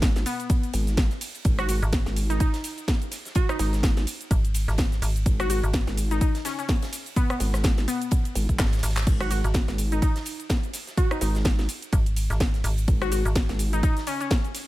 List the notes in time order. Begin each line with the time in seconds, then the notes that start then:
Already playing: G#1
0.02 kick, snare, closed hi-hat, ride, cabasa
0.16 snare, closed hi-hat, cabasa
0.26 B3, open hi-hat, ride, cabasa
0.40 closed hi-hat, cabasa
0.49 kick, closed hi-hat, ride, cabasa
0.63 closed hi-hat, cabasa
0.73 G#1, open hi-hat, ride, cabasa
0.87 snare, closed hi-hat, cabasa
0.97 kick, snare, closed hi-hat, ride, cabasa
1.10 snare, closed hi-hat, cabasa
1.21 open hi-hat, ride, cabasa
1.35 closed hi-hat, ride, cabasa
1.45 G#1, kick, closed hi-hat, ride, cabasa
1.59 F#4, cross-stick, closed hi-hat, cabasa
1.68 F#4, open hi-hat, ride, cabasa
1.82 G#1, closed hi-hat, cabasa
1.92 kick, snare, closed hi-hat, ride, cabasa
2.06 G#1, snare, closed hi-hat, cabasa
2.16 open hi-hat, ride, cabasa
2.30 D#4, closed hi-hat, cabasa
2.40 D#4, kick, closed hi-hat, ride, cabasa
2.54 snare, closed hi-hat, cabasa
2.64 open hi-hat, ride, cabasa
2.78 closed hi-hat, ride, cabasa
2.88 kick, snare, closed hi-hat, ride, cabasa
3.02 closed hi-hat, cabasa
3.11 snare, open hi-hat, ride, cabasa
3.25 snare, closed hi-hat, cabasa
3.35 F#4, kick, closed hi-hat, ride, cabasa
3.49 D#4, cross-stick, closed hi-hat, cabasa
3.59 G#1 D#4, snare, open hi-hat, ride, cabasa
3.73 snare, closed hi-hat, cabasa
3.83 kick, snare, closed hi-hat, ride, cabasa
3.97 snare, closed hi-hat, cabasa
4.07 open hi-hat, ride, cabasa
4.21 closed hi-hat, cabasa
4.31 G#1, kick, closed hi-hat, ride, cabasa
4.45 closed hi-hat, cabasa
4.54 open hi-hat, ride, cabasa
4.68 G#1, snare, closed hi-hat, cabasa
4.78 kick, snare, closed hi-hat, ride, cabasa
4.92 snare, closed hi-hat, cabasa
5.02 G#1, open hi-hat, ride, cabasa
5.16 closed hi-hat, ride, cabasa
5.26 G#1, kick, closed hi-hat, ride, cabasa
5.40 F#4, cross-stick, closed hi-hat, cabasa
5.49 F#4, open hi-hat, ride, cabasa
5.63 G#1, closed hi-hat, cabasa
5.73 kick, snare, closed hi-hat, ride, cabasa
5.87 G#1, snare, closed hi-hat, cabasa
5.97 open hi-hat, ride, cabasa
6.11 D#4, closed hi-hat, cabasa
6.21 D#4, kick, closed hi-hat, ride, cabasa
6.35 snare, closed hi-hat, cabasa
6.45 C#4, snare, open hi-hat, ride, cabasa
6.59 C#4, snare, closed hi-hat, cabasa
6.68 kick, snare, closed hi-hat, open hi-hat, ride, cabasa
6.82 snare, closed hi-hat, ride, cabasa
6.92 snare, open hi-hat, ride, cabasa
7.06 closed hi-hat, open hi-hat, cabasa
7.16 B3, kick, closed hi-hat, ride, cabasa
7.30 B3, cross-stick, closed hi-hat, cabasa
7.40 G#1, snare, open hi-hat, ride, cabasa
7.53 cross-stick, snare, closed hi-hat, cabasa
7.64 kick, snare, closed hi-hat, ride, cabasa
7.77 snare, closed hi-hat, cabasa
7.88 B3, open hi-hat, ride, cabasa
8.02 closed hi-hat, cabasa
8.11 kick, closed hi-hat, ride, cabasa
8.25 closed hi-hat, cabasa
8.35 G#1, open hi-hat, ride, cabasa
8.49 G#1, kick, closed hi-hat, cabasa
8.59 G#1, kick, snare, clap, closed hi-hat, ride, cabasa
8.66 snare, ride
8.72 snare, closed hi-hat, ride, cabasa
8.78 snare, ride
8.83 G#1, snare, open hi-hat, ride, cabasa
8.90 snare, ride
8.97 snare, clap, closed hi-hat, ride, cabasa
9.02 snare, ride
9.07 G#1, kick, closed hi-hat, crash, ride, cabasa
9.20 F#4, cross-stick, closed hi-hat, cabasa
9.31 F#4, open hi-hat, ride, cabasa
9.44 G#1, closed hi-hat, cabasa
9.54 kick, snare, closed hi-hat, ride, cabasa
9.68 G#1, snare, closed hi-hat, cabasa
9.78 open hi-hat, ride, cabasa
9.92 D#4, closed hi-hat, cabasa
10.02 D#4, kick, closed hi-hat, ride, cabasa
10.16 snare, closed hi-hat, cabasa
10.25 open hi-hat, ride, cabasa
10.39 closed hi-hat, ride, cabasa
10.50 kick, snare, closed hi-hat, ride, cabasa
10.63 closed hi-hat, cabasa
10.74 snare, open hi-hat, ride, cabasa
10.87 snare, closed hi-hat, cabasa
10.97 F#4, kick, closed hi-hat, ride, cabasa
11.11 D#4, cross-stick, closed hi-hat, cabasa
11.21 G#1 D#4, snare, open hi-hat, ride, cabasa
11.35 snare, closed hi-hat, cabasa
11.45 kick, snare, closed hi-hat, ride, cabasa
11.59 snare, closed hi-hat, cabasa
11.69 open hi-hat, ride, cabasa
11.82 closed hi-hat, cabasa
11.93 G#1, kick, closed hi-hat, ride, cabasa
12.06 closed hi-hat, cabasa
12.16 open hi-hat, ride, cabasa
12.30 G#1, snare, closed hi-hat, cabasa
12.40 kick, snare, closed hi-hat, ride, cabasa
12.54 snare, closed hi-hat, cabasa
12.64 G#1, open hi-hat, ride, cabasa
12.78 closed hi-hat, ride, cabasa
12.88 G#1, kick, closed hi-hat, ride, cabasa
13.02 F#4, cross-stick, closed hi-hat, cabasa
13.12 F#4, open hi-hat, ride, cabasa
13.25 G#1, closed hi-hat, cabasa
13.35 kick, snare, closed hi-hat, ride, cabasa
13.49 G#1, snare, closed hi-hat, cabasa
13.59 open hi-hat, ride, cabasa
13.73 D#4, closed hi-hat, cabasa
13.83 D#4, kick, closed hi-hat, ride, cabasa
13.97 snare, closed hi-hat, cabasa
14.07 C#4, open hi-hat, ride, cabasa
14.21 C#4, closed hi-hat, ride, cabasa
14.30 kick, snare, closed hi-hat, ride, cabasa
14.44 closed hi-hat, cabasa
14.54 snare, open hi-hat, ride, cabasa